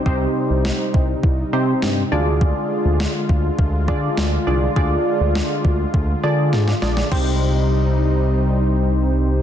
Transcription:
<<
  \new Staff \with { instrumentName = "Analog polysynth" } { \time 4/4 \key c \minor \tempo 4 = 102 <c' ees' g' c''>4. r4 <c' ees' g' c''>4 <d' f' aes' d''>8~ | <d' f' aes' d''>4 r4. <d' f' aes' d''>4 <d' f' aes' d''>8 | <d' f' aes' d''>4. r4 <d' f' aes' d''>4 <d' f' aes' d''>8 | <c' ees' g' c''>1 | }
  \new Staff \with { instrumentName = "Analog synth pad" } { \clef bass \time 4/4 \key c \minor <c g ees'>2.~ <c g ees'>8 <d aes f'>8~ | <d aes f'>1~ | <d aes f'>1 | <c g ees'>1 | }
  \new Staff \with { instrumentName = "Analog synth bass" } { \clef bass \time 4/4 \key c \minor c,8 r16 c,8 r16 c,8 c,8 c8 g,8 d,8~ | d,8 r16 d,8 r16 d,8 d,8 d8 d,8 c,8 | d,8 r16 d,8 r16 d,8 d,8 d8 aes,8 bes,,8 | c,1 | }
  \new DrumStaff \with { instrumentName = "Drums" } \drummode { \time 4/4 bd4 sn8 bd8 bd4 sn4 | bd4 sn8 bd8 bd8 bd8 sn4 | bd4 sn8 bd8 bd4 sn16 sn16 sn16 sn16 | <cymc bd>4 r4 r4 r4 | }
>>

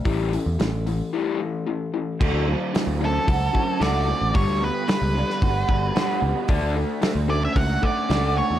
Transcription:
<<
  \new Staff \with { instrumentName = "Lead electric guitar" } { \time 4/4 \key d \major \tempo 4 = 112 r1 | r4. a'4. d''4 | cis''8 b'8 b'2~ b'8 r8 | r4. d''16 e''16 fis''8 d''4 cis''8 | }
  \new Staff \with { instrumentName = "Overdriven electric guitar" } { \time 4/4 \key d \major r1 | d8 fis8 fis8 cis'8 fis'8 cis'8 fis'8 a8 | g8 b8 g8 d'8 fis'8 d'8 fis'8 b8 | d8 a8 d8 cis'8 fis'8 cis'8 fis'8 a8 | }
  \new Staff \with { instrumentName = "Overdriven electric guitar" } { \clef bass \time 4/4 \key d \major <a, e g>8 <a, e>8 <a, e>8 <a, e>8 <a, e g>8 <a, e>8 <a, e>8 <a, e>8 | <d fis a>8 <d fis>8 <d fis>8 <d fis>8 <d fis>8 <d fis>8 <d fis a>8 <d fis>8 | <g, d g>8 <g, d>8 <g, d>8 <g, d>8 <g, d>8 <g, d>8 <g, d g>8 <g, d>8 | <d a d'>8 <d a>8 <d a>8 <d a>8 <d a>8 <d a>8 <d a d'>8 <d a>8 | }
  \new Staff \with { instrumentName = "Picked electric bass" } { \clef bass \time 4/4 \key d \major a,,8. e,16 a,,4 r2 | d,16 d,8 r8 d,8. cis,8 r8 cis,8. a,,16 | g,,16 d,8 r8 cis,8 r16 g,,8 g,,8 r8 cis,16 r16 | d,16 d,8 r8 d,8. cis,8 r8 cis,8. e,16 | }
  \new DrumStaff \with { instrumentName = "Drums" } \drummode { \time 4/4 <hho bd>8 hho8 <hho sn>8 hho8 r4 r4 | <cymc bd>4 <hho sn>4 <hho bd>8 bd8 <hho sn>4 | <hho bd>4 <hho sn>8. sn16 <hho bd>8 bd8 <hho sn>4 | <hho bd>4 <hho sn>4 <hho bd>8 bd8 <hho sn>4 | }
>>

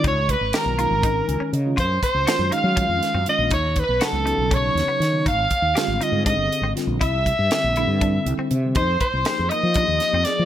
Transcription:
<<
  \new Staff \with { instrumentName = "Overdriven electric guitar" } { \time 7/8 \key c \minor \tempo 4 = 120 des''8 ces''8 bes'2 r8 | c''8 c''4 f''4. ees''8 | cis''8 b'8 a'4 cis''4. | f''4. ees''8 ees''4 r8 |
e''2. r8 | c''8 c''4 ees''4. d''8 | }
  \new Staff \with { instrumentName = "Soprano saxophone" } { \time 7/8 \key c \minor des''8 ces''8 bes'2 r8 | c''8 c''4 f''4. ees''8 | cis''8 b'8 a'4 cis''4. | f''4. ees''8 ees''4 r8 |
e''2. r8 | c''8 c''4 ees''4. d''8 | }
  \new Staff \with { instrumentName = "Clean electric guitar" } { \time 7/8 \key c \minor ees'8 r8 g'8 f'8 ees'8 r16 des'8 r16 | f'8 r8 ges'8 ees'8 des'8 r16 c'8 r16 | dis'8 r8 fis'8 dis'8 cis'8 r16 b8 r16 | ees'8 r8 g'8 ees'8 d'8 r16 c'8 r16 |
e'8 r8 g'8 e'8 d'8 r16 c'8 r16 | ees'8 r8 g'8 ees'8 d'8 r16 c'8 r16 | }
  \new Staff \with { instrumentName = "Tine electric piano" } { \time 7/8 \key c \minor r2 r8 aes''8 ees''8 | r2. r8 | r2. r8 | r2. r8 |
r2 r8 g''16 e''16 e''8 | r2. r8 | }
  \new Staff \with { instrumentName = "Tine electric piano" } { \time 7/8 \key c \minor r4 <ees aes des' f'>8 <ees aes des' ees'>4. r16 <ees aes des' f'>16 | r4 <ees aes des' f'>8 <ees aes des' ges'>8 <ees aes des' f'>8. r16 <ees aes des' f'>8 | r4 <cis fis b dis'>8 <cis fis b dis'>4. r16 <cis fis b dis'>16 | r4 <d g c' f'>8 <d g c' f'>8 <d c' g' aes'>8. r16 <d g c' f'>8 |
r4 <d g c' e'>8 <d g c' e'>4. r16 <d g c' g'>16 | r4 <f bes ees' aes'>8 <f bes ees' bes'>8 <f bes ees' g'>8. r16 <f bes ees' aes'>8 | }
  \new Staff \with { instrumentName = "Fretless electric bass" } { \clef bass \time 7/8 \key c \minor des,8. aes,,16 r16 ces,8 aes,,8. des,16 r16 des8 | ges,8 r16 des,16 r16 ges,16 r16 ges8 f,16 r16 ges,16 r16 bes,,16 | dis,8. b,,16 r16 cis,8 b,,8. dis,16 r16 dis8 | aes,,8 r16 ees,16 r16 aes,,16 r16 aes,8 g,,16 r16 aes,,16 r16 bes,,16 |
c,8. g,16 r16 bes,,8 g,8. c,16 r16 c8 | f,8 r16 c,16 r16 f,16 r16 f8 ees,16 r16 f,16 r16 f16 | }
  \new DrumStaff \with { instrumentName = "Drums" } \drummode { \time 7/8 <hh bd>8 <hh bd>8 <hh sn>8 hh8 <hh bd>8 hh8 hh8 | <hh bd>8 <hh bd>8 <hh sn>8 hh8 <hh bd>8 <hh sn>8 hh8 | <hh bd>8 <hh bd>8 <hh sn>8 hh8 <hh bd>8 <hh sn>8 <hh sn>8 | <hh bd>8 <hh bd>8 <hh sn>8 hh8 <hh bd>8 hh8 <hh sn>8 |
<hh bd>8 <hh bd>8 <hh sn>8 hh8 <hh bd>8 hh8 hh8 | <hh bd>8 <hh bd>8 <hh sn>8 hh8 <hh bd>8 <hh sn>8 <hh sn>8 | }
>>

